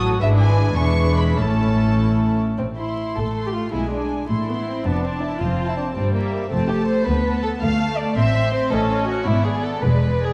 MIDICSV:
0, 0, Header, 1, 6, 480
1, 0, Start_track
1, 0, Key_signature, 0, "minor"
1, 0, Tempo, 378072
1, 272, Time_signature, 6, 3, 24, 8
1, 1239, Tempo, 403497
1, 3159, Tempo, 381437
1, 4119, Tempo, 369914
1, 11799, Tempo, 388853
1, 13107, End_track
2, 0, Start_track
2, 0, Title_t, "Violin section"
2, 0, Program_c, 0, 48
2, 271, Note_on_c, 0, 76, 64
2, 365, Note_off_c, 0, 76, 0
2, 511, Note_on_c, 0, 80, 64
2, 980, Note_off_c, 0, 80, 0
2, 995, Note_on_c, 0, 85, 66
2, 1481, Note_off_c, 0, 85, 0
2, 1486, Note_on_c, 0, 83, 54
2, 1721, Note_off_c, 0, 83, 0
2, 1726, Note_on_c, 0, 81, 55
2, 2929, Note_off_c, 0, 81, 0
2, 3402, Note_on_c, 0, 84, 32
2, 4106, Note_off_c, 0, 84, 0
2, 4119, Note_on_c, 0, 84, 32
2, 4600, Note_off_c, 0, 84, 0
2, 4613, Note_on_c, 0, 80, 29
2, 4849, Note_off_c, 0, 80, 0
2, 4866, Note_on_c, 0, 80, 31
2, 5332, Note_off_c, 0, 80, 0
2, 5342, Note_on_c, 0, 84, 33
2, 5568, Note_off_c, 0, 84, 0
2, 5584, Note_on_c, 0, 84, 32
2, 6061, Note_off_c, 0, 84, 0
2, 6079, Note_on_c, 0, 81, 31
2, 6302, Note_off_c, 0, 81, 0
2, 6318, Note_on_c, 0, 81, 35
2, 7017, Note_off_c, 0, 81, 0
2, 7030, Note_on_c, 0, 81, 35
2, 7496, Note_off_c, 0, 81, 0
2, 7738, Note_on_c, 0, 76, 37
2, 8205, Note_off_c, 0, 76, 0
2, 8223, Note_on_c, 0, 81, 40
2, 8436, Note_off_c, 0, 81, 0
2, 8452, Note_on_c, 0, 81, 38
2, 8916, Note_off_c, 0, 81, 0
2, 9165, Note_on_c, 0, 81, 43
2, 9871, Note_off_c, 0, 81, 0
2, 9885, Note_on_c, 0, 81, 43
2, 10357, Note_off_c, 0, 81, 0
2, 10376, Note_on_c, 0, 84, 44
2, 10601, Note_off_c, 0, 84, 0
2, 10616, Note_on_c, 0, 84, 45
2, 11076, Note_off_c, 0, 84, 0
2, 11078, Note_on_c, 0, 75, 43
2, 11307, Note_off_c, 0, 75, 0
2, 11323, Note_on_c, 0, 75, 44
2, 11786, Note_on_c, 0, 74, 40
2, 11790, Note_off_c, 0, 75, 0
2, 12011, Note_off_c, 0, 74, 0
2, 12025, Note_on_c, 0, 74, 41
2, 12480, Note_off_c, 0, 74, 0
2, 12495, Note_on_c, 0, 74, 38
2, 12735, Note_off_c, 0, 74, 0
2, 12749, Note_on_c, 0, 74, 39
2, 13107, Note_off_c, 0, 74, 0
2, 13107, End_track
3, 0, Start_track
3, 0, Title_t, "Violin section"
3, 0, Program_c, 1, 48
3, 0, Note_on_c, 1, 66, 47
3, 0, Note_on_c, 1, 69, 48
3, 258, Note_off_c, 1, 69, 0
3, 269, Note_on_c, 1, 64, 47
3, 269, Note_on_c, 1, 71, 46
3, 273, Note_off_c, 1, 66, 0
3, 936, Note_off_c, 1, 64, 0
3, 936, Note_off_c, 1, 71, 0
3, 998, Note_on_c, 1, 64, 42
3, 1003, Note_on_c, 1, 71, 44
3, 1708, Note_off_c, 1, 64, 0
3, 1710, Note_off_c, 1, 71, 0
3, 1723, Note_on_c, 1, 69, 40
3, 1725, Note_on_c, 1, 64, 40
3, 2905, Note_off_c, 1, 64, 0
3, 2928, Note_off_c, 1, 69, 0
3, 3151, Note_on_c, 1, 60, 49
3, 3249, Note_off_c, 1, 60, 0
3, 3390, Note_on_c, 1, 64, 46
3, 3867, Note_off_c, 1, 64, 0
3, 3880, Note_on_c, 1, 69, 47
3, 4241, Note_off_c, 1, 69, 0
3, 4260, Note_on_c, 1, 67, 42
3, 4366, Note_on_c, 1, 65, 49
3, 4374, Note_off_c, 1, 67, 0
3, 4611, Note_off_c, 1, 65, 0
3, 4612, Note_on_c, 1, 64, 53
3, 4839, Note_on_c, 1, 62, 45
3, 4848, Note_off_c, 1, 64, 0
3, 5318, Note_off_c, 1, 62, 0
3, 5333, Note_on_c, 1, 64, 49
3, 6053, Note_off_c, 1, 64, 0
3, 6062, Note_on_c, 1, 59, 56
3, 6296, Note_on_c, 1, 60, 45
3, 6307, Note_off_c, 1, 59, 0
3, 6542, Note_off_c, 1, 60, 0
3, 6542, Note_on_c, 1, 64, 51
3, 6771, Note_on_c, 1, 65, 51
3, 6784, Note_off_c, 1, 64, 0
3, 7139, Note_off_c, 1, 65, 0
3, 7147, Note_on_c, 1, 64, 47
3, 7248, Note_on_c, 1, 62, 50
3, 7267, Note_off_c, 1, 64, 0
3, 7347, Note_off_c, 1, 62, 0
3, 7486, Note_on_c, 1, 60, 62
3, 7728, Note_off_c, 1, 60, 0
3, 7735, Note_on_c, 1, 58, 53
3, 8203, Note_on_c, 1, 60, 60
3, 8204, Note_off_c, 1, 58, 0
3, 8436, Note_on_c, 1, 67, 58
3, 8440, Note_off_c, 1, 60, 0
3, 8674, Note_on_c, 1, 72, 60
3, 8680, Note_off_c, 1, 67, 0
3, 8914, Note_off_c, 1, 72, 0
3, 8919, Note_on_c, 1, 71, 67
3, 9402, Note_off_c, 1, 71, 0
3, 9405, Note_on_c, 1, 69, 61
3, 9501, Note_off_c, 1, 69, 0
3, 9645, Note_on_c, 1, 77, 69
3, 10117, Note_off_c, 1, 77, 0
3, 10123, Note_on_c, 1, 74, 68
3, 10365, Note_off_c, 1, 74, 0
3, 10369, Note_on_c, 1, 76, 73
3, 10833, Note_off_c, 1, 76, 0
3, 10842, Note_on_c, 1, 72, 67
3, 11071, Note_on_c, 1, 69, 69
3, 11075, Note_off_c, 1, 72, 0
3, 11548, Note_on_c, 1, 66, 66
3, 11553, Note_off_c, 1, 69, 0
3, 11784, Note_on_c, 1, 64, 73
3, 11788, Note_off_c, 1, 66, 0
3, 12010, Note_on_c, 1, 68, 63
3, 12021, Note_off_c, 1, 64, 0
3, 12251, Note_off_c, 1, 68, 0
3, 12251, Note_on_c, 1, 69, 62
3, 12485, Note_on_c, 1, 71, 61
3, 12493, Note_off_c, 1, 69, 0
3, 12981, Note_on_c, 1, 68, 56
3, 12985, Note_off_c, 1, 71, 0
3, 13107, Note_off_c, 1, 68, 0
3, 13107, End_track
4, 0, Start_track
4, 0, Title_t, "Viola section"
4, 0, Program_c, 2, 48
4, 0, Note_on_c, 2, 54, 52
4, 0, Note_on_c, 2, 66, 54
4, 270, Note_off_c, 2, 54, 0
4, 271, Note_off_c, 2, 66, 0
4, 275, Note_on_c, 2, 56, 50
4, 281, Note_on_c, 2, 62, 50
4, 939, Note_off_c, 2, 56, 0
4, 942, Note_off_c, 2, 62, 0
4, 986, Note_on_c, 2, 56, 47
4, 989, Note_on_c, 2, 62, 45
4, 1702, Note_off_c, 2, 56, 0
4, 1703, Note_off_c, 2, 62, 0
4, 1716, Note_on_c, 2, 61, 42
4, 1718, Note_on_c, 2, 57, 43
4, 2925, Note_off_c, 2, 61, 0
4, 2926, Note_off_c, 2, 57, 0
4, 3880, Note_on_c, 2, 57, 40
4, 4557, Note_off_c, 2, 57, 0
4, 4603, Note_on_c, 2, 56, 41
4, 5316, Note_off_c, 2, 56, 0
4, 5324, Note_on_c, 2, 57, 41
4, 5569, Note_off_c, 2, 57, 0
4, 5578, Note_on_c, 2, 59, 37
4, 5817, Note_on_c, 2, 60, 42
4, 5824, Note_off_c, 2, 59, 0
4, 6058, Note_on_c, 2, 62, 47
4, 6065, Note_off_c, 2, 60, 0
4, 6783, Note_off_c, 2, 62, 0
4, 6783, Note_on_c, 2, 60, 49
4, 7487, Note_off_c, 2, 60, 0
4, 7492, Note_on_c, 2, 55, 46
4, 8196, Note_off_c, 2, 55, 0
4, 8213, Note_on_c, 2, 57, 53
4, 8910, Note_off_c, 2, 57, 0
4, 8933, Note_on_c, 2, 59, 54
4, 9648, Note_off_c, 2, 59, 0
4, 9654, Note_on_c, 2, 57, 55
4, 10368, Note_on_c, 2, 60, 56
4, 10372, Note_off_c, 2, 57, 0
4, 11075, Note_on_c, 2, 61, 61
4, 11081, Note_off_c, 2, 60, 0
4, 11794, Note_on_c, 2, 59, 60
4, 11795, Note_off_c, 2, 61, 0
4, 12496, Note_off_c, 2, 59, 0
4, 12499, Note_on_c, 2, 56, 50
4, 13107, Note_off_c, 2, 56, 0
4, 13107, End_track
5, 0, Start_track
5, 0, Title_t, "Cello section"
5, 0, Program_c, 3, 48
5, 0, Note_on_c, 3, 45, 51
5, 255, Note_off_c, 3, 45, 0
5, 271, Note_on_c, 3, 44, 52
5, 937, Note_off_c, 3, 44, 0
5, 987, Note_on_c, 3, 40, 44
5, 1716, Note_on_c, 3, 45, 41
5, 1717, Note_off_c, 3, 40, 0
5, 2925, Note_off_c, 3, 45, 0
5, 3153, Note_on_c, 3, 45, 44
5, 3762, Note_off_c, 3, 45, 0
5, 3881, Note_on_c, 3, 45, 44
5, 4490, Note_off_c, 3, 45, 0
5, 4614, Note_on_c, 3, 47, 42
5, 5219, Note_off_c, 3, 47, 0
5, 5334, Note_on_c, 3, 45, 43
5, 5949, Note_off_c, 3, 45, 0
5, 6063, Note_on_c, 3, 41, 48
5, 6668, Note_off_c, 3, 41, 0
5, 6790, Note_on_c, 3, 41, 45
5, 7389, Note_off_c, 3, 41, 0
5, 7496, Note_on_c, 3, 43, 53
5, 8096, Note_off_c, 3, 43, 0
5, 8219, Note_on_c, 3, 41, 51
5, 8811, Note_off_c, 3, 41, 0
5, 8930, Note_on_c, 3, 38, 57
5, 9530, Note_off_c, 3, 38, 0
5, 9646, Note_on_c, 3, 38, 60
5, 10251, Note_off_c, 3, 38, 0
5, 10373, Note_on_c, 3, 45, 66
5, 10967, Note_off_c, 3, 45, 0
5, 11076, Note_on_c, 3, 45, 56
5, 11678, Note_off_c, 3, 45, 0
5, 11797, Note_on_c, 3, 44, 63
5, 12381, Note_off_c, 3, 44, 0
5, 12495, Note_on_c, 3, 40, 51
5, 13107, Note_off_c, 3, 40, 0
5, 13107, End_track
6, 0, Start_track
6, 0, Title_t, "Double bass section"
6, 0, Program_c, 4, 48
6, 0, Note_on_c, 4, 33, 57
6, 260, Note_off_c, 4, 33, 0
6, 282, Note_on_c, 4, 32, 53
6, 943, Note_off_c, 4, 32, 0
6, 993, Note_on_c, 4, 28, 48
6, 1719, Note_off_c, 4, 28, 0
6, 1724, Note_on_c, 4, 33, 41
6, 2928, Note_off_c, 4, 33, 0
6, 3161, Note_on_c, 4, 33, 44
6, 3766, Note_off_c, 4, 33, 0
6, 3885, Note_on_c, 4, 33, 46
6, 4492, Note_off_c, 4, 33, 0
6, 4608, Note_on_c, 4, 35, 43
6, 5215, Note_off_c, 4, 35, 0
6, 5338, Note_on_c, 4, 33, 47
6, 5951, Note_off_c, 4, 33, 0
6, 6072, Note_on_c, 4, 29, 48
6, 6672, Note_off_c, 4, 29, 0
6, 6798, Note_on_c, 4, 29, 50
6, 7393, Note_off_c, 4, 29, 0
6, 7513, Note_on_c, 4, 31, 53
6, 8106, Note_off_c, 4, 31, 0
6, 8226, Note_on_c, 4, 29, 51
6, 8814, Note_off_c, 4, 29, 0
6, 8930, Note_on_c, 4, 38, 58
6, 9530, Note_off_c, 4, 38, 0
6, 9653, Note_on_c, 4, 38, 60
6, 10254, Note_off_c, 4, 38, 0
6, 10374, Note_on_c, 4, 33, 60
6, 10968, Note_off_c, 4, 33, 0
6, 11084, Note_on_c, 4, 33, 62
6, 11682, Note_off_c, 4, 33, 0
6, 11802, Note_on_c, 4, 32, 59
6, 12384, Note_off_c, 4, 32, 0
6, 12495, Note_on_c, 4, 28, 57
6, 13107, Note_off_c, 4, 28, 0
6, 13107, End_track
0, 0, End_of_file